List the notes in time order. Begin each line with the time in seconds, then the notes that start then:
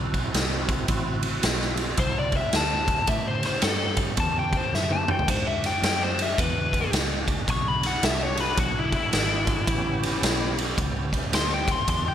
Already playing: B1 C4 E4 F#4
0.14 kick, ride
0.34 C2, snare, ride
0.69 kick, ride
0.88 A1 C4 E4 F#4, kick, ride
1.23 ride
1.43 B1, snare, ride
1.61 snare
1.77 ride
1.97 C2 C5, kick, ride
2.19 D5
2.32 kick, ride
2.37 E5
2.53 D2 A5, snare, ride
2.88 kick, ride
3.07 A2 B3 C#4 G4 E5, kick, ride
3.28 C5
3.43 C5, snare, ride
3.62 G2 A4, snare, ride
3.97 kick, ride
4.17 E2 A5, kick, ride
4.39 G5
4.53 kick, ride
4.57 C5
4.73 F#2 E5, snare
4.91 A5, high tom
5.08 G5, mid tom
5.19 floor tom
5.28 G#2 G#3 D4 F#4 C5, kick, ride, crash
5.47 E5
5.64 G5, snare, ride
5.82 F#2 G5, snare, ride
6.03 C5
6.19 E5, ride
6.38 E2 B4, kick, ride
6.73 kick, ride
6.92 C#2, snare, ride
7.28 kick, ride
7.48 B1 D4 F#4 G#4 C#6, kick, ride
7.68 B5
7.83 F#5, snare, ride
8.03 C2 E5, snare, ride
8.22 C#5
8.37 B4, ride
8.57 B1 F#4, kick, ride
8.79 E4
8.92 E4, kick, ride
9.13 G#1, snare, ride
9.47 kick, ride
9.67 A1 B3 C#4 G4, kick, ride
10.03 snare, ride
10.23 B1, snare, ride
10.58 ride
10.78 C#2, kick, ride
11.13 kick, ride
11.33 D2 C6, snare, ride
11.54 G5
11.68 C6, kick, ride
11.88 E2 G#3 D4 F#4 C6, kick, ride
12.08 G5